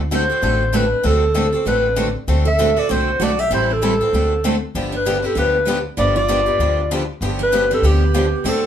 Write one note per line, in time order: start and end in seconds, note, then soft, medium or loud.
0.00 0.30 D2 medium
0.11 0.22 D3 medium
0.11 0.22 A3 medium
0.11 0.22 C4 medium
0.11 0.22 F#4 medium
0.11 0.69 F#4 medium
0.11 0.23 A4 medium
0.11 0.78 C5 medium
0.30 0.42 C4 soft
0.30 0.42 F#4 soft
0.30 0.42 A4 medium
0.42 0.92 A1 medium
0.42 0.62 D3 medium
0.42 0.62 A3 medium
0.42 0.62 C4 medium
0.42 0.62 F#4 medium
0.42 0.62 A4 medium
0.73 0.84 D3 medium
0.73 0.84 A3 medium
0.73 0.84 C4 medium
0.73 1.06 D4 medium
0.73 0.84 F#4 medium
0.73 0.84 A4 medium
0.73 1.08 B4 medium
1.03 1.54 D2 medium
1.03 1.23 D3 medium
1.03 1.23 A3 medium
1.03 1.23 C4 medium
1.03 1.66 C4 medium
1.03 1.24 F#4 medium
1.03 1.24 A4 medium
1.03 1.67 A4 medium
1.34 1.45 D3 medium
1.34 1.46 A3 medium
1.34 1.46 C4 medium
1.34 1.46 F#4 medium
1.34 1.46 A4 medium
1.53 1.66 C4 soft
1.53 1.66 F#4 soft
1.53 1.65 A4 soft
1.65 2.15 A1 medium
1.65 1.85 D3 medium
1.65 1.86 A3 medium
1.65 1.86 C4 medium
1.65 2.12 D4 medium
1.65 1.86 F#4 medium
1.65 1.86 A4 medium
1.65 2.12 B4 medium
1.96 2.07 D3 medium
1.96 2.07 A3 medium
1.96 2.07 C4 medium
1.96 2.08 F#4 medium
1.96 2.07 A4 medium
2.28 2.77 D2 medium
2.28 2.47 D3 medium
2.28 2.47 A3 medium
2.28 2.47 C4 medium
2.28 2.47 F#4 medium
2.28 2.48 A4 medium
2.45 2.76 A4 medium
2.45 2.80 E5 medium
2.59 2.69 D3 medium
2.59 2.69 A3 medium
2.59 2.69 C4 medium
2.59 2.70 F#4 medium
2.59 2.69 A4 medium
2.76 2.90 C4 soft
2.76 2.88 F#4 medium
2.76 2.89 F#4 soft
2.76 2.89 A4 medium
2.76 2.92 D5 medium
2.89 3.16 C2 medium
2.89 3.09 D3 medium
2.89 3.10 A3 medium
2.89 3.09 C4 medium
2.89 3.18 F#4 medium
2.89 3.10 F#4 medium
2.89 3.09 A4 medium
2.89 3.24 C5 medium
3.20 3.46 B1 medium
3.20 3.31 D3 medium
3.20 3.32 A3 medium
3.20 3.31 C4 medium
3.20 3.39 F#4 medium
3.20 3.32 F#4 medium
3.20 3.32 A4 medium
3.20 3.42 D5 medium
3.39 3.51 G4 medium
3.39 3.52 E5 medium
3.50 4.00 A1 medium
3.50 3.70 E3 medium
3.50 3.70 G3 medium
3.50 3.71 C4 medium
3.50 3.70 E4 medium
3.50 3.71 E4 medium
3.50 3.71 A4 medium
3.50 3.75 C5 medium
3.70 4.62 C4 medium
3.70 4.64 A4 medium
3.82 3.93 E3 medium
3.82 3.93 G3 medium
3.82 3.93 C4 medium
3.82 3.93 E4 medium
3.82 3.93 A4 medium
4.01 4.13 C4 soft
4.01 4.13 E4 soft
4.01 4.13 A4 soft
4.13 4.62 D2 medium
4.13 4.33 D3 medium
4.13 4.33 A3 medium
4.13 4.33 C4 medium
4.13 4.33 F#4 medium
4.13 4.33 A4 medium
4.44 4.54 D3 medium
4.44 4.54 A3 medium
4.44 4.55 C4 medium
4.44 4.55 F#4 medium
4.44 4.55 A4 medium
4.75 5.24 G1 medium
4.75 4.94 D3 medium
4.75 4.94 F3 medium
4.75 4.94 B3 medium
4.75 4.94 D4 medium
4.75 4.95 G4 medium
4.92 5.22 D4 medium
4.96 5.27 B4 medium
5.06 5.16 D3 medium
5.06 5.16 F3 medium
5.06 5.17 B3 medium
5.06 5.16 D4 medium
5.06 5.17 G4 medium
5.22 5.36 B3 soft
5.22 5.35 C4 medium
5.22 5.36 D4 soft
5.22 5.36 G4 medium
5.22 5.37 A4 medium
5.35 5.85 D2 medium
5.35 5.56 D3 medium
5.35 5.56 F3 medium
5.35 5.56 B3 medium
5.35 5.81 D4 medium
5.35 5.56 D4 medium
5.35 5.56 G4 medium
5.35 5.83 B4 medium
5.68 5.78 D3 medium
5.68 5.78 F3 medium
5.68 5.78 B3 medium
5.68 5.78 D4 medium
5.68 5.78 G4 medium
5.97 6.47 G1 medium
5.97 6.17 D3 medium
5.97 6.17 F3 medium
5.97 6.18 B3 medium
5.97 6.18 D4 medium
5.97 6.14 F4 medium
5.97 6.18 G4 medium
5.97 6.15 D5 medium
6.16 7.04 F4 medium
6.16 7.05 D5 medium
6.28 6.39 D3 medium
6.28 6.40 F3 medium
6.28 6.40 B3 medium
6.28 6.40 D4 medium
6.28 6.40 G4 medium
6.46 6.60 B3 soft
6.46 6.59 D4 soft
6.46 6.59 G4 soft
6.59 7.08 D2 medium
6.59 6.79 D3 medium
6.59 6.79 F3 medium
6.59 6.80 B3 medium
6.59 6.80 D4 medium
6.59 6.80 G4 medium
6.91 7.01 D3 medium
6.91 7.02 F3 medium
6.91 7.02 B3 medium
6.91 7.02 D4 medium
6.91 7.02 G4 medium
7.21 7.70 G1 medium
7.21 7.41 D3 medium
7.21 7.41 F3 medium
7.21 7.41 B3 medium
7.21 7.41 D4 medium
7.21 7.42 G4 medium
7.39 7.68 D4 medium
7.43 7.70 B4 medium
7.52 7.63 D3 medium
7.52 7.63 F3 medium
7.52 7.63 B3 medium
7.52 7.63 D4 medium
7.52 7.63 G4 medium
7.71 7.83 B3 soft
7.71 7.83 C4 medium
7.71 7.83 D4 soft
7.71 7.83 G4 medium
7.71 7.88 A4 medium
7.82 8.32 D2 medium
7.82 8.03 D3 medium
7.82 8.03 F3 medium
7.82 8.45 B3 medium
7.82 8.03 B3 medium
7.82 8.03 D4 medium
7.82 8.03 G4 medium
7.82 8.50 G4 medium
8.14 8.25 D3 medium
8.14 8.25 F3 medium
8.14 8.25 B3 medium
8.14 8.25 D4 medium
8.14 8.25 G4 medium
8.44 8.66 D2 medium
8.44 8.64 D3 medium
8.44 8.65 A3 medium
8.44 8.66 C4 medium
8.44 8.65 C4 medium
8.44 8.65 F#4 medium
8.44 8.65 A4 medium
8.49 8.66 A4 medium